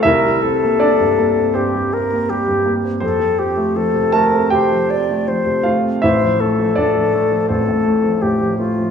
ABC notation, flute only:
X:1
M:4/4
L:1/8
Q:1/4=80
K:F
V:1 name="Flute"
B A3 G B G2 | A G A B c d c z | c A3 A2 G F |]